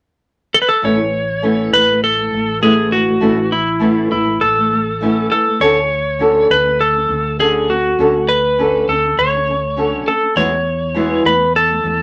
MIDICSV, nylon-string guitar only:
0, 0, Header, 1, 2, 480
1, 0, Start_track
1, 0, Key_signature, 3, "major"
1, 0, Tempo, 594648
1, 673, Time_signature, 4, 2, 24, 8
1, 9706, End_track
2, 0, Start_track
2, 0, Title_t, "Nylon-string guitar"
2, 0, Program_c, 0, 24
2, 663, Note_on_c, 0, 45, 77
2, 672, Note_on_c, 0, 57, 68
2, 673, Note_on_c, 0, 61, 68
2, 678, Note_on_c, 0, 59, 77
2, 681, Note_on_c, 0, 64, 77
2, 774, Note_off_c, 0, 45, 0
2, 783, Note_on_c, 0, 45, 36
2, 793, Note_off_c, 0, 57, 0
2, 793, Note_off_c, 0, 61, 0
2, 796, Note_off_c, 0, 59, 0
2, 798, Note_off_c, 0, 64, 0
2, 808, Note_on_c, 0, 57, 42
2, 981, Note_off_c, 0, 45, 0
2, 993, Note_off_c, 0, 57, 0
2, 1148, Note_on_c, 0, 45, 64
2, 1152, Note_on_c, 0, 57, 68
2, 1156, Note_on_c, 0, 61, 72
2, 1158, Note_on_c, 0, 59, 70
2, 1163, Note_on_c, 0, 64, 70
2, 1377, Note_off_c, 0, 45, 0
2, 1387, Note_on_c, 0, 45, 54
2, 1394, Note_off_c, 0, 57, 0
2, 1396, Note_off_c, 0, 61, 0
2, 1397, Note_off_c, 0, 59, 0
2, 1399, Note_off_c, 0, 64, 0
2, 1408, Note_on_c, 0, 57, 58
2, 1502, Note_off_c, 0, 45, 0
2, 1512, Note_on_c, 0, 45, 37
2, 1522, Note_off_c, 0, 57, 0
2, 1537, Note_on_c, 0, 57, 51
2, 1706, Note_off_c, 0, 45, 0
2, 1718, Note_off_c, 0, 57, 0
2, 1746, Note_on_c, 0, 45, 41
2, 1770, Note_on_c, 0, 57, 48
2, 1852, Note_off_c, 0, 45, 0
2, 1862, Note_on_c, 0, 45, 51
2, 1878, Note_off_c, 0, 57, 0
2, 1888, Note_on_c, 0, 57, 51
2, 2061, Note_off_c, 0, 45, 0
2, 2074, Note_off_c, 0, 57, 0
2, 2108, Note_on_c, 0, 45, 68
2, 2115, Note_on_c, 0, 57, 68
2, 2117, Note_on_c, 0, 61, 69
2, 2120, Note_on_c, 0, 59, 67
2, 2125, Note_on_c, 0, 64, 68
2, 2340, Note_off_c, 0, 45, 0
2, 2350, Note_on_c, 0, 45, 57
2, 2356, Note_off_c, 0, 57, 0
2, 2357, Note_off_c, 0, 61, 0
2, 2358, Note_off_c, 0, 59, 0
2, 2361, Note_off_c, 0, 64, 0
2, 2373, Note_on_c, 0, 57, 60
2, 2462, Note_off_c, 0, 45, 0
2, 2472, Note_on_c, 0, 45, 40
2, 2485, Note_off_c, 0, 57, 0
2, 2497, Note_on_c, 0, 57, 49
2, 2576, Note_off_c, 0, 45, 0
2, 2580, Note_off_c, 0, 57, 0
2, 2586, Note_on_c, 0, 45, 73
2, 2590, Note_on_c, 0, 57, 69
2, 2599, Note_on_c, 0, 61, 70
2, 2601, Note_on_c, 0, 59, 75
2, 2605, Note_on_c, 0, 64, 72
2, 2692, Note_off_c, 0, 45, 0
2, 2702, Note_on_c, 0, 45, 35
2, 2714, Note_off_c, 0, 57, 0
2, 2718, Note_off_c, 0, 61, 0
2, 2719, Note_off_c, 0, 59, 0
2, 2721, Note_off_c, 0, 64, 0
2, 2726, Note_on_c, 0, 57, 48
2, 2902, Note_off_c, 0, 45, 0
2, 2914, Note_off_c, 0, 57, 0
2, 3063, Note_on_c, 0, 45, 67
2, 3066, Note_on_c, 0, 57, 67
2, 3073, Note_on_c, 0, 61, 61
2, 3078, Note_on_c, 0, 59, 82
2, 3078, Note_on_c, 0, 64, 75
2, 3297, Note_off_c, 0, 45, 0
2, 3307, Note_on_c, 0, 45, 55
2, 3312, Note_off_c, 0, 57, 0
2, 3316, Note_off_c, 0, 61, 0
2, 3318, Note_off_c, 0, 59, 0
2, 3318, Note_off_c, 0, 64, 0
2, 3331, Note_on_c, 0, 57, 64
2, 3416, Note_off_c, 0, 45, 0
2, 3426, Note_on_c, 0, 45, 45
2, 3443, Note_off_c, 0, 57, 0
2, 3453, Note_on_c, 0, 57, 44
2, 3624, Note_off_c, 0, 45, 0
2, 3638, Note_off_c, 0, 57, 0
2, 3675, Note_on_c, 0, 45, 44
2, 3698, Note_on_c, 0, 57, 46
2, 3785, Note_off_c, 0, 45, 0
2, 3795, Note_on_c, 0, 45, 52
2, 3808, Note_off_c, 0, 57, 0
2, 3817, Note_on_c, 0, 57, 56
2, 3989, Note_off_c, 0, 45, 0
2, 4000, Note_off_c, 0, 57, 0
2, 4041, Note_on_c, 0, 45, 67
2, 4049, Note_on_c, 0, 57, 70
2, 4054, Note_on_c, 0, 61, 77
2, 4056, Note_on_c, 0, 59, 64
2, 4058, Note_on_c, 0, 64, 74
2, 4263, Note_off_c, 0, 45, 0
2, 4273, Note_on_c, 0, 45, 56
2, 4284, Note_off_c, 0, 57, 0
2, 4287, Note_off_c, 0, 59, 0
2, 4287, Note_off_c, 0, 61, 0
2, 4289, Note_off_c, 0, 64, 0
2, 4301, Note_on_c, 0, 57, 57
2, 4388, Note_off_c, 0, 45, 0
2, 4398, Note_on_c, 0, 45, 39
2, 4410, Note_off_c, 0, 57, 0
2, 4423, Note_on_c, 0, 57, 47
2, 4518, Note_off_c, 0, 57, 0
2, 4519, Note_off_c, 0, 45, 0
2, 4521, Note_on_c, 0, 50, 70
2, 4530, Note_on_c, 0, 61, 75
2, 4534, Note_on_c, 0, 66, 82
2, 4539, Note_on_c, 0, 69, 83
2, 4625, Note_off_c, 0, 50, 0
2, 4634, Note_on_c, 0, 50, 37
2, 4645, Note_off_c, 0, 61, 0
2, 4647, Note_off_c, 0, 66, 0
2, 4649, Note_off_c, 0, 69, 0
2, 4662, Note_on_c, 0, 61, 47
2, 4829, Note_off_c, 0, 50, 0
2, 4843, Note_off_c, 0, 61, 0
2, 4997, Note_on_c, 0, 50, 73
2, 5005, Note_on_c, 0, 61, 69
2, 5010, Note_on_c, 0, 66, 81
2, 5017, Note_on_c, 0, 69, 69
2, 5232, Note_off_c, 0, 50, 0
2, 5241, Note_on_c, 0, 50, 55
2, 5243, Note_off_c, 0, 61, 0
2, 5245, Note_off_c, 0, 66, 0
2, 5248, Note_off_c, 0, 69, 0
2, 5268, Note_on_c, 0, 61, 64
2, 5345, Note_off_c, 0, 50, 0
2, 5355, Note_on_c, 0, 50, 42
2, 5371, Note_off_c, 0, 61, 0
2, 5380, Note_on_c, 0, 61, 49
2, 5549, Note_off_c, 0, 50, 0
2, 5562, Note_off_c, 0, 61, 0
2, 5592, Note_on_c, 0, 50, 45
2, 5618, Note_on_c, 0, 61, 54
2, 5707, Note_off_c, 0, 50, 0
2, 5717, Note_on_c, 0, 50, 51
2, 5729, Note_off_c, 0, 61, 0
2, 5743, Note_on_c, 0, 61, 62
2, 5910, Note_off_c, 0, 50, 0
2, 5923, Note_off_c, 0, 61, 0
2, 5966, Note_on_c, 0, 50, 69
2, 5971, Note_on_c, 0, 61, 72
2, 5977, Note_on_c, 0, 66, 75
2, 5982, Note_on_c, 0, 69, 73
2, 6193, Note_off_c, 0, 50, 0
2, 6203, Note_on_c, 0, 50, 54
2, 6205, Note_off_c, 0, 61, 0
2, 6208, Note_off_c, 0, 66, 0
2, 6211, Note_off_c, 0, 69, 0
2, 6230, Note_on_c, 0, 61, 62
2, 6315, Note_off_c, 0, 50, 0
2, 6324, Note_on_c, 0, 50, 40
2, 6335, Note_off_c, 0, 61, 0
2, 6350, Note_on_c, 0, 61, 42
2, 6438, Note_off_c, 0, 50, 0
2, 6446, Note_off_c, 0, 61, 0
2, 6447, Note_on_c, 0, 50, 75
2, 6456, Note_on_c, 0, 61, 75
2, 6462, Note_on_c, 0, 66, 79
2, 6464, Note_on_c, 0, 69, 77
2, 6559, Note_off_c, 0, 50, 0
2, 6568, Note_off_c, 0, 61, 0
2, 6569, Note_on_c, 0, 50, 40
2, 6571, Note_off_c, 0, 66, 0
2, 6571, Note_off_c, 0, 69, 0
2, 6594, Note_on_c, 0, 61, 39
2, 6756, Note_off_c, 0, 50, 0
2, 6768, Note_off_c, 0, 61, 0
2, 6928, Note_on_c, 0, 50, 67
2, 6933, Note_on_c, 0, 61, 73
2, 6940, Note_on_c, 0, 66, 71
2, 6943, Note_on_c, 0, 69, 73
2, 7155, Note_off_c, 0, 50, 0
2, 7165, Note_on_c, 0, 50, 55
2, 7166, Note_off_c, 0, 61, 0
2, 7170, Note_off_c, 0, 66, 0
2, 7171, Note_off_c, 0, 69, 0
2, 7188, Note_on_c, 0, 61, 59
2, 7278, Note_off_c, 0, 50, 0
2, 7288, Note_on_c, 0, 50, 43
2, 7294, Note_off_c, 0, 61, 0
2, 7314, Note_on_c, 0, 61, 49
2, 7475, Note_off_c, 0, 50, 0
2, 7488, Note_off_c, 0, 61, 0
2, 7528, Note_on_c, 0, 50, 41
2, 7555, Note_on_c, 0, 61, 51
2, 7637, Note_off_c, 0, 50, 0
2, 7647, Note_on_c, 0, 50, 54
2, 7657, Note_off_c, 0, 61, 0
2, 7673, Note_on_c, 0, 61, 59
2, 7835, Note_off_c, 0, 50, 0
2, 7847, Note_off_c, 0, 61, 0
2, 7884, Note_on_c, 0, 50, 59
2, 7889, Note_on_c, 0, 61, 70
2, 7895, Note_on_c, 0, 66, 64
2, 7899, Note_on_c, 0, 69, 70
2, 8108, Note_off_c, 0, 50, 0
2, 8118, Note_on_c, 0, 50, 52
2, 8123, Note_off_c, 0, 61, 0
2, 8126, Note_off_c, 0, 66, 0
2, 8129, Note_off_c, 0, 69, 0
2, 8146, Note_on_c, 0, 61, 64
2, 8231, Note_off_c, 0, 50, 0
2, 8241, Note_on_c, 0, 50, 41
2, 8252, Note_off_c, 0, 61, 0
2, 8263, Note_on_c, 0, 61, 44
2, 8356, Note_on_c, 0, 40, 73
2, 8359, Note_off_c, 0, 50, 0
2, 8362, Note_on_c, 0, 52, 67
2, 8363, Note_off_c, 0, 61, 0
2, 8364, Note_on_c, 0, 56, 79
2, 8367, Note_on_c, 0, 59, 70
2, 8371, Note_on_c, 0, 66, 77
2, 8373, Note_on_c, 0, 64, 80
2, 8460, Note_off_c, 0, 40, 0
2, 8469, Note_on_c, 0, 40, 38
2, 8474, Note_off_c, 0, 52, 0
2, 8481, Note_off_c, 0, 56, 0
2, 8482, Note_off_c, 0, 59, 0
2, 8484, Note_off_c, 0, 66, 0
2, 8484, Note_on_c, 0, 52, 37
2, 8485, Note_off_c, 0, 64, 0
2, 8495, Note_on_c, 0, 56, 44
2, 8665, Note_off_c, 0, 40, 0
2, 8672, Note_off_c, 0, 52, 0
2, 8678, Note_off_c, 0, 56, 0
2, 8834, Note_on_c, 0, 40, 64
2, 8836, Note_on_c, 0, 52, 67
2, 8842, Note_on_c, 0, 56, 69
2, 8846, Note_on_c, 0, 59, 75
2, 8851, Note_on_c, 0, 66, 70
2, 8855, Note_on_c, 0, 64, 66
2, 9068, Note_off_c, 0, 40, 0
2, 9076, Note_off_c, 0, 52, 0
2, 9077, Note_on_c, 0, 40, 55
2, 9079, Note_off_c, 0, 56, 0
2, 9081, Note_off_c, 0, 59, 0
2, 9083, Note_off_c, 0, 66, 0
2, 9086, Note_off_c, 0, 64, 0
2, 9100, Note_on_c, 0, 56, 59
2, 9187, Note_off_c, 0, 40, 0
2, 9196, Note_on_c, 0, 40, 40
2, 9208, Note_off_c, 0, 56, 0
2, 9212, Note_on_c, 0, 52, 41
2, 9222, Note_on_c, 0, 56, 45
2, 9388, Note_off_c, 0, 40, 0
2, 9396, Note_off_c, 0, 52, 0
2, 9401, Note_off_c, 0, 56, 0
2, 9435, Note_on_c, 0, 40, 47
2, 9447, Note_on_c, 0, 52, 47
2, 9459, Note_on_c, 0, 56, 46
2, 9544, Note_off_c, 0, 40, 0
2, 9553, Note_on_c, 0, 40, 55
2, 9556, Note_off_c, 0, 52, 0
2, 9566, Note_on_c, 0, 52, 55
2, 9567, Note_off_c, 0, 56, 0
2, 9577, Note_on_c, 0, 56, 60
2, 9706, Note_off_c, 0, 40, 0
2, 9706, Note_off_c, 0, 52, 0
2, 9706, Note_off_c, 0, 56, 0
2, 9706, End_track
0, 0, End_of_file